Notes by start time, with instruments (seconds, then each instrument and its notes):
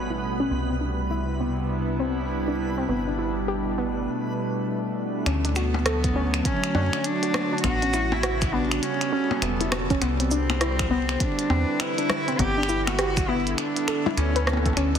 Already playing: fm bass A1, ambient pad B2 G3 A3 C#4 F#4, synth texture B3 B4, cello C#4
0.10 synth pluck E4
0.40 synth pluck C#4
0.51 fm bass C2, ambient pad C3, synth pluck B3
0.70 synth pluck C4
0.79 synth pluck D4, ambient pad E4
0.99 ambient pad D4
1.07 ambient pad B3, synth pluck E4
1.40 synth pluck B3
2.00 synth pluck C4
2.48 synth pluck D4
2.78 synth pluck C4
2.89 fm bass G1, ambient pad B2, synth pluck B3
3.07 synth pluck D4
3.17 ambient pad A3, synth pluck E4
3.48 synth pluck G4
3.78 synth pluck B3
5.26 fm bass D2, ambient pad D3, synth pluck C#4, finger snap, closed hi-hat
5.36 ambient pad F#3
5.45 synth pluck D4, closed hi-hat
5.56 cello B3, synth pluck F#4, finger snap, cabasa
5.73 ambient pad C#5, percussion blips
5.86 synth pluck A4, finger snap, cross-stick, closed hi-hat
6.04 kick, closed hi-hat
6.16 synth pluck C#4
6.34 ambient pad F#4, finger snap, closed hi-hat
6.45 cello C#4, kick, closed hi-hat
6.64 finger snap, closed hi-hat
6.75 fm bass F#2, synth pluck D4, percussion blips
6.93 finger snap
7.04 cello D4, closed hi-hat
7.23 synth pluck F#4, closed hi-hat
7.34 finger snap, cross-stick, percussion blips
7.53 synth pluck D4
7.58 closed hi-hat
7.64 fm bass A1, ambient pad C#3, synth pluck B3, cello F#4, finger snap, kick, closed hi-hat
7.82 ambient pad G3, synth pluck C#4, closed hi-hat
7.94 synth pluck E4, finger snap, cabasa
8.12 cello E4, percussion blips
8.23 synth pluck F#4, cross-stick, closed hi-hat
8.35 ambient pad B3
8.42 finger snap, kick, closed hi-hat, cabasa
8.53 synth pluck B3, cello D4
8.71 ambient pad A4, finger snap, closed hi-hat
8.83 cello C#4, closed hi-hat
9.01 finger snap, closed hi-hat
9.12 synth pluck C#4
9.31 percussion blips
9.42 fm bass E1, cello B3, finger snap, closed hi-hat
9.61 synth pluck E4, closed hi-hat
9.72 finger snap, cross-stick, percussion blips
9.90 synth pluck C#4, kick, closed hi-hat
10.02 fm bass C2, ambient pad D3, synth pluck B3, finger snap, closed hi-hat
10.20 synth pluck C4, closed hi-hat
10.31 cello C4, synth pluck D4, cabasa
10.50 finger snap, percussion blips
10.61 ambient pad E4, synth pluck E4, cross-stick, closed hi-hat
10.72 ambient pad C4
10.79 finger snap, kick, closed hi-hat
10.91 synth pluck B3
11.09 ambient pad B4, finger snap
11.20 cello D4, kick, closed hi-hat
11.39 closed hi-hat
11.50 fm bass E2, synth pluck C4, percussion blips
11.80 cello E4, finger snap, closed hi-hat
11.98 synth pluck D4, closed hi-hat
12.10 finger snap, cross-stick, percussion blips
12.28 synth pluck C4, closed hi-hat
12.39 fm bass G1, synth pluck B3, cello G4, kick, closed hi-hat
12.58 synth pluck D4
12.63 finger snap
12.69 synth pluck E4, cabasa
12.87 cello F#4, ambient pad A4, finger snap, percussion blips
12.99 synth pluck G4, cross-stick, closed hi-hat
13.17 finger snap, kick, closed hi-hat, cabasa
13.24 ambient pad B3
13.28 synth pluck B3, cello E4
13.47 closed hi-hat
13.58 cello D4, finger snap, closed hi-hat
13.76 closed hi-hat
13.88 synth pluck A4, finger snap
14.06 synth pluck E4, percussion blips
14.17 fm bass D2, cello C#4, synth pluck E4, finger snap, closed hi-hat
14.36 synth pluck B4, closed hi-hat
14.47 cross-stick, percussion blips
14.53 percussion blips
14.57 percussion blips
14.66 synth pluck A4, kick, closed hi-hat, percussion blips
14.73 fm bass D2, synth pluck C#4, finger snap, closed hi-hat, percussion blips
14.95 synth pluck D4, closed hi-hat